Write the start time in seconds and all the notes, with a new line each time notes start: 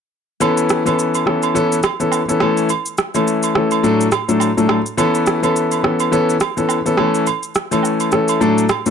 0.40 E3 B3 C#4 A4, high agogo, shaker
0.57 shaker
0.69 cross-stick, shaker
0.85 E3 B3 C#4 A4, high agogo, shaker
0.99 shaker
1.14 high agogo, shaker
1.26 E3 B3 C#4 A4, cross-stick
1.43 high agogo, shaker
1.55 E3 B3 C#4 A4, shaker
1.72 shaker
1.83 cross-stick, high agogo, shaker
2.00 E3 B3 C#4 A4, shaker
2.12 high agogo, low woodblock, shaker
2.28 E3 B3 C#4 A4, shaker
2.40 E3 A3 C#4 A4, cross-stick, high agogo
2.57 shaker
2.69 high agogo, shaker
2.86 shaker
2.98 cross-stick, shaker
3.14 E3 A3 C#4 A4, high agogo, shaker
3.27 shaker
3.43 high agogo, shaker
3.55 E3 A3 C#4 A4, cross-stick
3.71 high agogo, shaker
3.83 A2 F#3 A3 D4 A4, shaker
4.01 shaker
4.12 cross-stick, high agogo, shaker
4.28 A2 F#3 A3 D4 A4, shaker
4.40 high agogo, low woodblock, shaker
4.57 A2 F#3 A3 D4 A4, shaker
4.69 cross-stick, high agogo
4.86 shaker
4.97 E3 B3 C#4 A4, high agogo, shaker
5.15 shaker
5.26 cross-stick, shaker
5.42 E3 B3 C#4 A4, high agogo, shaker
5.56 shaker
5.72 high agogo, shaker
5.83 E3 B3 C#4 A4, cross-stick
6.00 high agogo, shaker
6.12 E3 B3 C#4 A4, shaker
6.29 shaker
6.40 cross-stick, high agogo, shaker
6.57 E3 B3 C#4 A4, shaker
6.69 high agogo, low woodblock, shaker
6.86 E3 B3 C#4 A4, shaker
6.97 E3 A3 C#4 A4, cross-stick, high agogo
7.14 shaker
7.27 high agogo, shaker
7.43 shaker
7.55 cross-stick, shaker
7.71 E3 A3 C#4 A4, high agogo, shaker
7.83 low woodblock, shaker
8.00 high agogo, shaker
8.12 E3 A3 C#4 A4, cross-stick, shaker
8.28 high agogo, shaker
8.41 A2 F#3 A3 D4 A4, shaker
8.58 shaker
8.69 cross-stick, high agogo, shaker
8.86 A2 F#3 A3 D4 A4, shaker